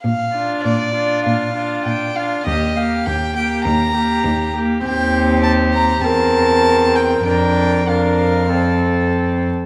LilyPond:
<<
  \new Staff \with { instrumentName = "Violin" } { \time 4/4 \key bes \major \tempo 4 = 99 f''4 d''4 f''4 g''8 f''8 | ees''8 f''8 g''8 g''8 bes''4. r8 | g''4 a''8 bes''8 a''4. g''8 | g''4 f''2 r4 | }
  \new Staff \with { instrumentName = "Violin" } { \time 4/4 \key bes \major r8 f'4 f'4 f'4 f'8 | g'8 g'4 g'4 g'4 g'8 | g'2 bes'2 | bes'4 bes'4 a'4. r8 | }
  \new Staff \with { instrumentName = "Viola" } { \time 4/4 \key bes \major r8 d'4 d'4 d'4 d'8 | bes8 bes4 bes4 bes4 bes8 | c'2 c'2 | d'4 d'4 c'4. r8 | }
  \new Staff \with { instrumentName = "Cello" } { \clef bass \time 4/4 \key bes \major bes,4 bes,4 bes,4 bes,4 | ees,4 ees,4 ees,4 ees,4 | ees,2 e,2 | f,2.~ f,8 r8 | }
>>